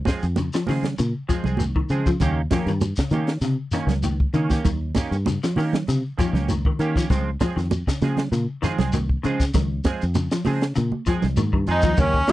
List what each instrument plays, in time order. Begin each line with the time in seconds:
0.05 clean electric guitar F3 G#3 C4 G#4, kick, snare, closed hi-hat, high conga, shekere
0.22 fingered electric bass F2, closed hi-hat, shekere
0.36 clean electric guitar C#3, closed hi-hat, high conga, shekere
0.53 clean electric guitar F3, snare, shekere
0.67 fingered electric bass C#3, clean electric guitar D#3 F3 G#3 C4 G#4, snare, open hi-hat, high conga, shekere
0.83 snare, closed hi-hat, low conga
0.98 fingered electric bass A#2, clean electric guitar C#3, closed hi-hat, shekere
1.28 clean electric guitar F3 G#3 C4 G#4, muted fingered electric bass stroke, kick, snare, closed hi-hat, shekere
1.44 fingered electric bass C2, clean electric guitar G#3 C4 G#4, low conga, shekere
1.57 clean electric guitar D#3, closed hi-hat, high conga, shekere
1.76 clean electric guitar D#3, kick
1.89 fingered electric bass C#3, clean electric guitar F3 G#3 C4 G#4, closed hi-hat, shekere
2.06 clean electric guitar F3, kick, shekere
2.20 fingered electric bass D#2, clean electric guitar C#3 D#3 A#3 C#4 G4, kick, closed hi-hat, low conga, shekere
2.51 clean electric guitar D#3 F3 A#3 C#4 G4, kick, snare, closed hi-hat, high conga, shekere
2.66 fingered electric bass G2, clean electric guitar D#3, closed hi-hat, shekere
2.81 closed hi-hat, high conga, shekere
2.96 clean electric guitar C#3, kick, snare, shekere
3.11 fingered electric bass D#3, clean electric guitar D#3 A#3 C#4 G4, closed hi-hat, high conga, shekere
3.27 snare, closed hi-hat
3.41 fingered electric bass C3, clean electric guitar C#3, snare, closed hi-hat, shekere
3.72 clean electric guitar D#3 A#3 C#4, muted fingered electric bass stroke, muted clean electric guitar stroke, snare, closed hi-hat, shekere
3.87 fingered electric bass C#2, snare, closed hi-hat, low conga, shekere
4.03 clean electric guitar D#3, closed hi-hat, high conga, shekere
4.20 kick
4.34 clean electric guitar C#3 D#3 A#3 C#4, fingered electric bass D#3, muted clean electric guitar stroke, closed hi-hat, shekere
4.50 clean electric guitar A#3 C#4 G4, kick, snare, high conga, shekere
4.65 fingered electric bass D#2, clean electric guitar D#3, kick, closed hi-hat, low conga, shekere
4.95 clean electric guitar D#3 A#3 C#4 G4, kick, snare, closed hi-hat, high conga, shekere
5.11 fingered electric bass G2, closed hi-hat, shekere
5.26 clean electric guitar C#3, snare, closed hi-hat, high conga, shekere
5.43 clean electric guitar F3, snare, shekere
5.56 fingered electric bass D#3, clean electric guitar D#3 A#3 C#4 G4, open hi-hat, high conga, shekere
5.73 snare, closed hi-hat, low conga
5.88 fingered electric bass C3, clean electric guitar C#3, closed hi-hat, shekere
6.18 clean electric guitar D#3 F3 A#3 C#4 G4, muted fingered electric bass stroke, kick, snare, closed hi-hat, shekere
6.33 fingered electric bass C#2, clean electric guitar A#3 C#4 G4, snare, low conga, shekere
6.48 clean electric guitar D#3, closed hi-hat, high conga, shekere
6.65 clean electric guitar D#3, kick
6.79 fingered electric bass D#3, clean electric guitar D#3 A#3 C#4 G4, closed hi-hat, shekere
6.96 clean electric guitar F3 A#3 C#4 G4, kick, snare, shekere
7.10 fingered electric bass C#2, clean electric guitar C#3 F3 G#3 C4, muted clean electric guitar stroke, kick, snare, closed hi-hat, low conga, shekere
7.40 clean electric guitar F3 G#3 C4 G#4, kick, snare, closed hi-hat, high conga, shekere
7.56 fingered electric bass F2, clean electric guitar D#3, snare, closed hi-hat, shekere
7.71 closed hi-hat, high conga, shekere
7.87 clean electric guitar C#3, kick, snare, shekere
8.02 fingered electric bass C#3, clean electric guitar F3 G#3 C4 G#4, snare, closed hi-hat, high conga, shekere
8.17 snare, closed hi-hat, low conga
8.32 fingered electric bass A#2, clean electric guitar C#3, closed hi-hat, shekere
8.62 clean electric guitar D#3 F3 G#3 C4 G#4, muted fingered electric bass stroke, snare, closed hi-hat, shekere
8.79 fingered electric bass C2, clean electric guitar G#3 C4 G#4, snare, closed hi-hat, low conga, shekere
8.93 clean electric guitar D#3, closed hi-hat, high conga, shekere
9.09 kick
9.23 clean electric guitar C#3 F3 G#3 C4 G#4, fingered electric bass C#3, closed hi-hat, shekere
9.40 kick, snare, shekere
9.54 fingered electric bass C#2, clean electric guitar D#3, kick, snare, closed hi-hat, low conga, shekere
9.84 clean electric guitar F3 G#3 C4 G#4, kick, snare, closed hi-hat, high conga, shekere
10.02 fingered electric bass F2, closed hi-hat, shekere
10.15 clean electric guitar C#3, closed hi-hat, high conga, shekere
10.31 clean electric guitar F3, snare, shekere
10.45 fingered electric bass C#3, clean electric guitar F3 G#3 C4 G#4, muted clean electric guitar stroke, open hi-hat, high conga, shekere
10.61 snare, closed hi-hat
10.75 fingered electric bass A#2, clean electric guitar C#3, closed hi-hat, shekere
10.92 high conga
11.06 clean electric guitar F3 G#3 C4 G#4, muted fingered electric bass stroke, kick, snare, closed hi-hat, shekere
11.22 fingered electric bass C2, snare, low conga, shekere
11.36 fingered electric bass G#2, clean electric guitar D#3, closed hi-hat, high conga, shekere
11.53 fingered electric bass G2, clean electric guitar D#3, kick
11.67 fingered electric bass F2, clean electric guitar F3 G#3 C4 G#4, tenor saxophone D#4, closed hi-hat, shekere
11.71 tenor saxophone D#4
11.82 fingered electric bass D#2, clean electric guitar F3 G#3 C4 G#4, kick, low conga, shekere
11.97 fingered electric bass D#2, clean electric guitar C#3 A#3 C#4 G4, tonewheel organ A#3 D#4 G4, tenor saxophone C#4, kick, closed hi-hat, high conga, low conga, shekere
12.14 kick
12.27 clean electric guitar F3 A#3, tenor saxophone F4, snare, closed hi-hat, shekere